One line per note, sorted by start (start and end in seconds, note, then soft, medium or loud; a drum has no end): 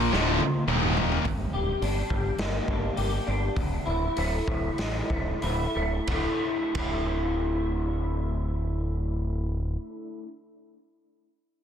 0.00 0.11 A#2 loud
0.00 0.11 F3 loud
0.00 0.12 A#3 loud
0.00 0.64 F4 medium
0.12 0.38 D1 medium
0.12 0.39 D2 loud
0.12 0.39 A2 loud
0.12 0.40 D3 loud
0.12 snare medium
0.40 high tom medium
0.67 1.20 D#1 loud
0.67 1.24 D#2 medium
0.67 1.24 A#2 medium
0.67 1.24 D#3 loud
0.67 mid tom medium
0.83 mid tom medium
0.97 floor tom loud
1.12 floor tom loud
1.25 1.44 G1 medium
1.25 2.67 G2 medium
1.25 kick loud
1.25 open hi-hat soft
1.53 1.73 D1 medium
1.53 2.95 G4 medium
1.82 2.01 G1 medium
1.82 2.68 D4 medium
1.82 open hi-hat soft
2.10 2.30 G1 medium
2.10 3.55 G3 medium
2.10 kick medium
2.38 2.58 G1 medium
2.38 3.56 A#3 medium
2.38 snare loud
2.38 open hi-hat soft
2.68 2.88 G1 medium
2.68 3.26 D4 medium
2.68 kick medium
2.97 3.18 G1 medium
2.97 3.55 G4 medium
2.97 open hi-hat soft
3.27 3.48 G1 medium
3.27 3.89 D4 medium
3.56 3.77 D1 medium
3.56 5.09 D2 medium
3.56 kick medium
3.56 open hi-hat soft
3.86 4.07 D1 medium
3.86 5.41 E4 medium
4.16 4.38 D1 medium
4.16 5.09 A3 medium
4.16 open hi-hat soft
4.47 4.69 D1 medium
4.47 6.07 A2 medium
4.47 kick medium
4.78 5.00 A1 medium
4.78 6.08 D3 medium
4.78 snare medium
4.78 open hi-hat soft
5.10 5.32 D1 medium
5.10 5.74 A3 medium
5.10 kick medium
5.42 5.65 D1 medium
5.42 6.08 E4 medium
5.42 open hi-hat soft
5.75 5.98 D1 medium
5.75 6.08 A3 medium
6.07 6.26 D1 medium
6.07 6.73 D2 medium
6.07 6.75 A2 medium
6.07 6.75 D3 medium
6.07 6.76 A3 medium
6.07 6.77 E4 medium
6.07 kick medium
6.07 ride medium
6.74 9.75 D1 medium
6.74 10.24 D2 medium
6.74 10.25 A2 medium
6.74 10.26 D3 medium
6.74 10.27 A3 medium
6.74 kick medium
6.74 ride medium
6.78 10.28 E4 medium